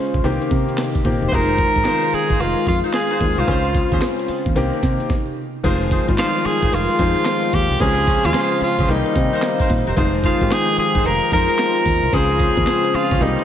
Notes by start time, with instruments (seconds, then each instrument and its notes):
Already playing: analog synth pad C#3 F4 C5, grand piano C#3 G#3 F4 C5
0.14 fingered electric bass C#2, kick, closed hi-hat
0.24 fingered electric bass C2, analog synth pad C3 A#3 D#4, grand piano D#3 A#3 C4 G4, closed hi-hat, cowbell
0.42 closed hi-hat
0.51 fingered electric bass C3, kick, closed hi-hat
0.69 closed hi-hat
0.77 snare, clap, closed hi-hat, cowbell
0.95 kick, closed hi-hat
1.04 fingered electric bass A#2, grand piano D#3 A#3 C4 G4, kick, open hi-hat
1.22 fingered electric bass E1, closed hi-hat
1.28 fingered electric bass F1, analog synth pad D#3 G#3 F4, grand piano D#3 G#3, horn section D#4 F4 G#4 C5, tenor saxophone C5, kick, closed hi-hat, cowbell
1.33 grand piano C4 F4, tenor saxophone A#4
1.49 closed hi-hat
1.58 kick, closed hi-hat
1.75 fingered electric bass G#1, kick, closed hi-hat
1.84 horn section D#4 F4 G#4 C5, snare, clap, closed hi-hat, cowbell
2.03 closed hi-hat
2.12 tenor saxophone G#4, muted fingered electric bass stroke, open hi-hat
2.30 fingered electric bass G#1, horn section D#4 F4 G#4 C5, kick, closed hi-hat
2.40 fingered electric bass F1, tenor saxophone F4, closed hi-hat, cowbell
2.57 closed hi-hat
2.67 fingered electric bass F2, tenor saxophone F4, kick, closed hi-hat
2.84 horn section D#4 F4 G#4 C5, closed hi-hat
2.93 tenor saxophone G#4, snare, clap, closed hi-hat, cowbell
3.11 horn section D#4 F4 G#4 C5, closed hi-hat
3.21 fingered electric bass D#2, grand piano D#3 G#3 C4 F4, kick, open hi-hat
3.38 fingered electric bass C2, horn section D#4 F4 G#4 C5, tenor saxophone F4, closed hi-hat
3.47 fingered electric bass C#2, grand piano C#3 G#3 C4 F4, analog synth pad C#3 C4, horn section C#4 F4 G#4 C5, kick, closed hi-hat, tambourine, cowbell
3.65 closed hi-hat
3.75 kick, closed hi-hat, tambourine
3.92 fingered electric bass D#2, horn section C#4 F4 G#4 C5, kick, closed hi-hat
4.01 snare, clap, closed hi-hat, tambourine, cowbell
4.19 closed hi-hat
4.28 muted fingered electric bass stroke, open hi-hat
4.46 fingered electric bass D#2, kick, closed hi-hat
4.55 fingered electric bass C2, analog synth pad C3 A#3 D#4, grand piano D#3 A#3 C4 G4, closed hi-hat, tambourine, cowbell
4.73 closed hi-hat
4.83 fingered electric bass C3, kick, snare, closed hi-hat, tambourine
5.00 closed hi-hat
5.10 kick, snare
5.63 fingered electric bass F1, grand piano D#3 F3 G#3 C4 F4, analog synth pad D#3 G#3 F4, horn section D#4 F4 G#4 C5, kick, closed hi-hat, crash, tambourine, cowbell
5.82 closed hi-hat
5.91 horn section D#4 F4 G#4 C5, kick, closed hi-hat, tambourine
6.08 fingered electric bass G#1, grand piano D#3 F3 G3 C4 F4, kick, closed hi-hat
6.15 grand piano G#3, horn section D#4 F4 G#4, snare, clap, closed hi-hat, tambourine, cowbell
6.19 tenor saxophone F4, horn section C5
6.36 closed hi-hat
6.45 tenor saxophone G#4, muted fingered electric bass stroke, open hi-hat
6.63 fingered electric bass G#1, horn section D#4 F4 G#4 C5, kick, closed hi-hat
6.72 fingered electric bass F1, tenor saxophone F4, closed hi-hat, tambourine, cowbell
6.89 closed hi-hat
6.99 fingered electric bass F2, grand piano D#3 F3 G#3 C4 G#4, horn section D#4 F4 G#4 C5, kick, closed hi-hat, tambourine
7.16 closed hi-hat
7.25 snare, clap, closed hi-hat, tambourine, cowbell
7.43 closed hi-hat
7.53 fingered electric bass D#2, tenor saxophone G4, kick, open hi-hat, tambourine
7.70 fingered electric bass C2, closed hi-hat
7.80 fingered electric bass C#2, grand piano C#3 F3 G#3 C4 F4, analog synth pad C#3 C4, horn section C#4 F4 G#4 C5, tenor saxophone G#4, kick, closed hi-hat, tambourine, cowbell
7.98 closed hi-hat
8.07 horn section C#4 F4 G#4 C5, kick, closed hi-hat, tambourine
8.25 fingered electric bass D#2, grand piano C#3 F3 G#3 C4 F4, tenor saxophone F4, closed hi-hat
8.34 horn section C#4 F4 G#4 C5, snare, clap, closed hi-hat, tambourine, cowbell
8.52 closed hi-hat
8.61 tenor saxophone F4, muted fingered electric bass stroke, open hi-hat
8.79 fingered electric bass C#2, horn section C#4 F4 G#4 C5, kick, closed hi-hat
8.88 fingered electric bass C2, analog synth pad C3 A#3 D#4, grand piano D#3 G3 A#3 C4 G4, tenor saxophone D#4, closed hi-hat, tambourine, cowbell
9.06 closed hi-hat
9.16 fingered electric bass C3, grand piano D#3 G3 A#3 C4 G4, kick, closed hi-hat, tambourine
9.33 horn section D#4 G4 A#4 C5, closed hi-hat
9.42 snare, clap, closed hi-hat, tambourine, cowbell
9.60 horn section D#4 G4 A#4 C5, kick, closed hi-hat
9.70 fingered electric bass A#2, kick, open hi-hat, tambourine
9.87 fingered electric bass E1, horn section D#4 G4 A#4 C5, closed hi-hat
9.96 fingered electric bass F1, grand piano D#3 F3 G#3 C4 F4, analog synth pad D#3 G#3 F4, horn section D#4 F4 G#4 C5, kick, closed hi-hat, tambourine, cowbell
10.15 closed hi-hat
10.24 horn section D#4 F4 G#4 C5, tenor saxophone F4, kick, closed hi-hat, tambourine
10.41 fingered electric bass G#1, grand piano D#3 F3 G#3 C4 G4, kick, closed hi-hat
10.51 horn section D#4 F4 G#4 C5, tenor saxophone G#4, snare, clap, closed hi-hat, tambourine, cowbell
10.69 closed hi-hat
10.78 tenor saxophone G#4, muted fingered electric bass stroke, open hi-hat
10.95 fingered electric bass G#1, horn section D#4 F4 G#4 C5, kick, closed hi-hat
11.05 fingered electric bass F1, tenor saxophone A#4, closed hi-hat, tambourine, cowbell
11.23 closed hi-hat
11.32 fingered electric bass F2, grand piano D#3 F3 G#3 C4 F4, horn section D#4 F4 G#4 C5, tenor saxophone A#4, kick, closed hi-hat, tambourine
11.50 closed hi-hat
11.58 snare, clap, closed hi-hat, tambourine, cowbell
11.76 closed hi-hat
11.86 fingered electric bass D#2, kick, open hi-hat, tambourine
12.03 fingered electric bass C2, closed hi-hat
12.12 fingered electric bass C#2, analog synth pad C#3 C4 F4, grand piano C#3 F3 G#3 C4 F4, horn section C#4 F4 G#4 C5, tenor saxophone G#4, kick, closed hi-hat, tambourine, cowbell
12.30 closed hi-hat
12.39 horn section C#4 F4 G#4 C5, kick, closed hi-hat, tambourine
12.57 fingered electric bass D#2, grand piano C#3 F3 G#3 C4 G#4, kick, closed hi-hat
12.66 horn section C#4 F4 G#4 C5, snare, clap, closed hi-hat, tambourine, cowbell
12.85 closed hi-hat
12.94 tenor saxophone F4, muted fingered electric bass stroke, open hi-hat
13.11 fingered electric bass C#2, horn section C#4 F4 G#4 C5, kick, closed hi-hat
13.20 fingered electric bass C2, analog synth pad C3 A#3 D#4, grand piano D#3 G3 A#3 C4 G4, tenor saxophone D#4, closed hi-hat, tambourine, cowbell
13.39 closed hi-hat